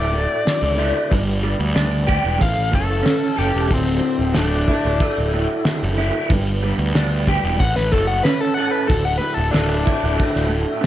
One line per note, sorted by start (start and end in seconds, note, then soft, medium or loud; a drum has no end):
0.00 0.26 D1 medium
0.00 0.15 D2 medium
0.00 0.11 A2 medium
0.00 1.11 A3 medium
0.00 0.77 E4 medium
0.00 1.08 E4 medium
0.00 1.09 F#4 medium
0.00 1.08 A4 medium
0.00 1.08 D5 medium
0.00 1.72 D5 loud
0.12 1.11 A2 medium
0.45 1.11 D3 medium
0.45 snare loud
0.45 open hi-hat soft
0.62 0.91 C#2 medium
0.78 1.11 E4 medium
1.09 1.54 G1 medium
1.09 2.38 G2 medium
1.09 2.39 D4 medium
1.09 2.39 G4 medium
1.09 3.67 B4 medium
1.09 2.39 D5 medium
1.09 kick loud
1.09 open hi-hat medium
1.43 2.41 G3 medium
1.60 1.74 D2 medium
1.75 2.18 D2 medium
1.75 2.40 D4 medium
1.75 snare loud
1.75 open hi-hat soft
2.07 2.40 G4 medium
2.07 kick medium
2.24 2.39 E1 medium
2.38 2.56 A1 loud
2.38 3.67 A2 medium
2.38 3.68 E3 medium
2.38 3.68 C#4 medium
2.38 6.25 A4 medium
2.38 2.73 F5 medium
2.38 kick loud
2.38 open hi-hat medium
2.57 2.71 A1 medium
2.72 3.02 F#1 medium
2.72 3.70 A3 medium
2.72 3.37 A4 medium
2.72 kick medium
3.03 3.69 C#4 medium
3.03 snare loud
3.03 open hi-hat medium
3.36 3.53 F#1 medium
3.36 3.70 G4 loud
3.36 3.70 A4 medium
3.54 3.69 E1 medium
3.67 3.99 D1 medium
3.67 5.31 D2 medium
3.67 7.54 D4 medium
3.67 6.26 E4 medium
3.67 6.26 F#4 medium
3.67 kick loud
3.67 open hi-hat medium
3.74 4.35 C4 medium
4.00 5.33 A2 medium
4.19 4.33 D1 medium
4.33 4.63 D1 medium
4.33 4.99 A3 medium
4.33 snare loud
4.33 open hi-hat medium
4.38 5.62 D4 loud
4.68 5.97 E4 medium
4.68 kick medium
4.85 4.99 D1 medium
5.00 6.30 A3 medium
5.00 kick loud
5.00 open hi-hat medium
5.18 5.45 D1 medium
5.34 6.30 A2 medium
5.65 6.30 D3 medium
5.65 snare loud
5.65 open hi-hat soft
5.83 6.10 F#1 medium
5.98 6.30 E4 medium
6.29 6.72 G1 medium
6.29 7.59 G2 medium
6.29 7.58 B3 medium
6.29 7.58 G4 medium
6.29 8.86 B4 medium
6.29 kick loud
6.29 open hi-hat medium
6.62 7.60 G3 medium
6.78 6.92 D2 medium
6.95 7.37 D2 medium
6.95 7.60 D4 medium
6.95 snare loud
6.95 open hi-hat medium
7.27 7.60 G4 medium
7.27 kick medium
7.44 7.58 E1 medium
7.58 7.74 A1 medium
7.58 8.88 A2 medium
7.58 8.87 C#4 medium
7.58 10.86 E4 medium
7.58 10.86 A4 medium
7.58 7.75 F#5 loud
7.58 kick loud
7.58 open hi-hat medium
7.76 7.90 A1 medium
7.76 7.91 B4 medium
7.76 snare soft
7.91 8.20 F#1 medium
7.91 8.89 A3 medium
7.91 8.07 A4 medium
7.91 kick medium
8.07 8.23 F#5 loud
8.23 8.89 C#4 medium
8.23 8.39 B4 medium
8.23 snare loud
8.23 open hi-hat medium
8.41 8.54 A4 medium
8.54 8.89 A4 medium
8.54 8.71 F#5 loud
8.71 8.87 B4 medium
8.88 9.17 D1 medium
8.88 10.51 D2 medium
8.88 10.86 D4 medium
8.88 10.86 F#4 medium
8.88 9.03 A4 loud
8.88 kick loud
8.88 open hi-hat medium
9.05 9.17 F#5 medium
9.18 10.48 A2 medium
9.18 9.34 B4 medium
9.34 9.52 D1 medium
9.34 9.51 A4 medium
9.51 9.82 D1 medium
9.51 10.14 A3 medium
9.51 10.79 D4 loud
9.51 snare loud
9.51 open hi-hat medium
9.86 10.86 E4 medium
9.86 kick medium
10.04 10.17 D1 medium
10.16 10.86 A3 medium
10.20 kick loud
10.20 open hi-hat medium
10.36 10.64 D1 medium
10.36 snare soft
10.49 10.86 A2 medium
10.81 10.86 D3 medium